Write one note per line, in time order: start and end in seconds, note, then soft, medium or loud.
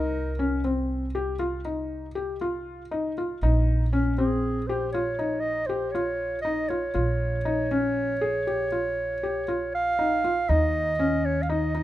0.00 3.38 C2 medium
0.00 0.29 D#4 medium
0.00 0.63 A#4 medium
0.39 0.59 C#4 medium
0.64 1.04 C4 medium
1.15 1.35 G4 medium
1.39 1.59 F4 medium
1.65 2.05 D#4 medium
2.15 2.35 G4 medium
2.41 2.81 F4 medium
2.91 3.11 D#4 medium
3.18 3.37 F4 medium
3.42 6.91 A#1 medium
3.42 3.83 D#4 medium
3.93 4.13 C#4 medium
4.18 4.58 C4 medium
4.18 4.69 G#4 medium
4.67 4.89 G4 medium
4.67 4.92 C5 medium
4.92 5.14 F4 medium
4.92 5.41 C#5 medium
5.19 5.59 D#4 medium
5.40 5.68 D#5 medium
5.66 5.89 G4 medium
5.66 5.93 C5 medium
5.91 6.35 F4 medium
5.91 6.41 C#5 medium
6.42 6.65 D#4 medium
6.42 6.70 D#5 medium
6.69 6.90 F4 medium
6.69 9.72 C#5 medium
6.94 10.44 A#1 medium
6.94 7.35 F4 medium
7.45 7.66 D#4 medium
7.71 8.11 C#4 medium
8.21 8.41 G#4 medium
8.47 8.67 G4 medium
8.72 9.12 F4 medium
9.23 9.43 G4 medium
9.48 9.88 F4 medium
9.75 10.51 F5 medium
9.99 10.19 D#4 medium
10.24 10.44 F4 medium
10.49 11.83 D#2 medium
10.49 10.89 D#4 medium
10.49 11.27 D#5 medium
10.99 11.39 C#4 medium
11.25 11.44 C#5 medium
11.42 11.52 F5 medium
11.49 11.69 D#4 medium
11.49 11.83 D#5 medium
11.75 11.83 D#4 medium